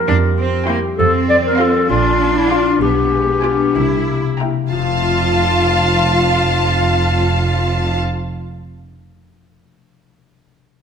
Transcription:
Already playing: F3 G3 C4 A#4
0.07 F2 D4 G4
0.38 C4
0.67 G3 A#3 E4 G5 C6
0.98 F2 F3 C4 A4
1.29 C4 D5
1.46 A#4
1.59 C4 F4 A4 F5 C6
1.89 A#1 A#2 D4 F4
2.20 A#3
2.37 E4
2.50 D4 F4 F5 D6
2.81 B1 B2 B3 G4
3.12 G#3
3.43 D4 F4 G#5 D6
3.75 C2 C3 E4
4.08 A#3
4.40 A#3 E4 G5 A#5
4.71 F1 F2 F3 F4 F5 A5
4.79 A3
4.86 C4
4.93 F4
5.00 C5

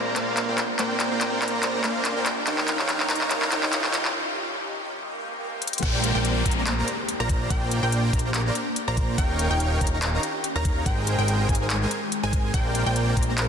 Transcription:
Already playing: A#1 A#3 D4 A#4 C5 D5 A#5, riser
0.16 A#1 A#3 A#4 C5 D5 F5, clap, closed hi-hat
0.37 clap, closed hi-hat
0.48 A#1 A#3 A#4 C5 D5 G5
0.58 clap, closed hi-hat
0.79 A#1 A#3 A#4 C5 D5 G5, clap, closed hi-hat
1.00 clap, closed hi-hat
1.11 A#1 A#3 A#4 C5 D5 G5
1.21 clap, closed hi-hat
1.42 A#1 A#3 A#4 C5 D5 A#5, clap, closed hi-hat
1.48 closed hi-hat
1.63 clap, closed hi-hat
1.84 A#1 A#3 A#4 C5 D5 F5, clap, closed hi-hat
2.05 clap, closed hi-hat
2.16 A#1 A#3 A#4 C5 D5 G5
2.26 clap, closed hi-hat
2.47 D#1 D#3 C#4 D#4 F4 G4 A#4 C#5 F5 G5, clap, closed hi-hat
2.58 clap
2.68 clap, closed hi-hat
2.79 D#1 D#4 A#4 C#5 F5 G5, clap
2.89 clap, closed hi-hat
3.00 clap
3.10 D#1 D#4 A#4 C#5 F5 A#5, clap, closed hi-hat
3.15 closed hi-hat
3.21 clap
3.31 clap, closed hi-hat
3.42 clap
3.52 D#1 D#4 A#4 C#5 F5 G5, clap, closed hi-hat
3.63 clap
3.73 clap, closed hi-hat
3.84 D#1 D#4 A#4 C#5 F5 G5, clap
3.94 clap, closed hi-hat
4.05 clap
4.15 G#3 C4
4.99 swell
5.62 closed hi-hat
5.67 closed hi-hat
5.73 closed hi-hat
5.78 closed hi-hat
5.82 A#1 A#3 D4 G4 A#4 C5 D5 G5, kick, closed hi-hat, crash, downlifter
6.04 closed hi-hat
6.15 A#1 A#3 A#4 C5 D5 G5
6.25 closed hi-hat
6.46 A#1 A#3 A#4 C5 D5 A#5, kick, closed hi-hat
6.51 closed hi-hat
6.67 clap, closed hi-hat
6.88 closed hi-hat
7.09 closed hi-hat
7.20 A#1 A#3 A#4 C5 D5 A#5
7.29 kick, closed hi-hat
7.50 A#1 A#3 A#4 C5 D5 G5, kick, closed hi-hat
7.71 closed hi-hat
7.83 A#1 A#3 A#4 C5 D5 G5
7.92 closed hi-hat
8.13 A#1 A#3 A#4 C5 D5 A#5, kick, closed hi-hat
8.19 closed hi-hat
8.34 clap, closed hi-hat
8.55 closed hi-hat
8.76 closed hi-hat
8.88 A#1 A#3 A#4 C5 D5 A#5
8.97 kick, closed hi-hat
9.18 D#1 D#3 C#4 D#4 F4 G4 A#4 C#5 F5 G5, kick, closed hi-hat
9.39 closed hi-hat
9.51 D#1 D#4 A#4 C#5 F5 G5
9.60 closed hi-hat
9.81 D#1 D#4 A#4 C#5 F5 A#5, kick, closed hi-hat
9.87 closed hi-hat
10.02 clap, closed hi-hat
10.23 closed hi-hat
10.44 closed hi-hat
10.55 D#1 D#4 A#4 C#5 F5 A#5
10.65 kick, closed hi-hat
10.86 G#1 G#3 C4 G#4 A#4 C5 G5, kick, closed hi-hat
11.07 closed hi-hat
11.18 G#1 G#3 G#4 A#4 C5 G5
11.28 closed hi-hat
11.49 G#1 G#3 G#4 A#4 C5 G#5, kick, closed hi-hat
11.55 closed hi-hat
11.70 clap, closed hi-hat
11.91 closed hi-hat
12.12 closed hi-hat
12.23 G#1 G#3 G#4 A#4 C5 G#5
12.33 kick, closed hi-hat
12.54 A#1 A#3 D4 A#4 C5 D5 G5, kick, closed hi-hat
12.75 closed hi-hat
12.86 A#1 A#3 A#4 C5 D5 G5
12.96 closed hi-hat
13.17 A#1 A#3 A#4 C5 D5 A#5, kick, closed hi-hat
13.23 closed hi-hat
13.38 clap, closed hi-hat

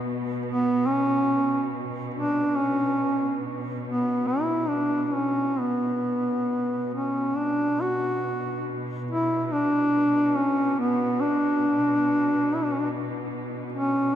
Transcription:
Already playing: B2
0.46 B3
0.86 C#4
2.14 D4
2.55 C#4
3.88 B3
4.28 E4
4.68 D4
5.04 D4
5.14 C#4
5.59 B3
6.94 C#4
7.37 B2 D4
7.82 F#4
9.11 E4
9.45 E4
9.52 D4
10.36 C#4
10.79 B3
11.20 D4
12.55 E4
12.64 D4
12.72 C#4
12.80 D4
13.72 C#4

